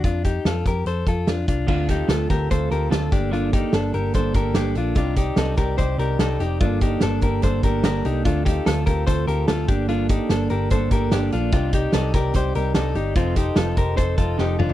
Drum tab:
CC |----------------|x---------------|----------------|----------------|
HH |x-x-x-x-x-x-x-x-|--x-x-x-x-x-x-x-|x-x-x-x-x-x-x-x-|x-x-x-x-x-x-x-x-|
SD |----o-------o---|----o-o-----o---|----o-------o---|----o-o-----o---|
T2 |----------------|----------------|----------------|----------------|
FT |----------------|----------------|----------------|----------------|
BD |o-o---o---o---o-|o-o---o-o-----o-|--o-----o-o-----|o-o---o-o-------|

CC |----------------|----------------|----------------|----------------|
HH |x-x-x-x-x-x-x-x-|x-x-x-x-x-x-x-x-|x-x-x-x-x-x-x-x-|x-x-x-x-x-x-x-x-|
SD |----o-------o---|----o-------o---|----o-------o---|----o-o-----o---|
T2 |----------------|----------------|----------------|----------------|
FT |----------------|----------------|----------------|----------------|
BD |o-o---o-o-o-----|o-o---o-o-----o-|--o-----o-o-----|o-o---o-o-------|

CC |----------------|
HH |x-x-x-x-x-x-----|
SD |----o-------o---|
T2 |--------------o-|
FT |---------------o|
BD |o-o---o-o-o-----|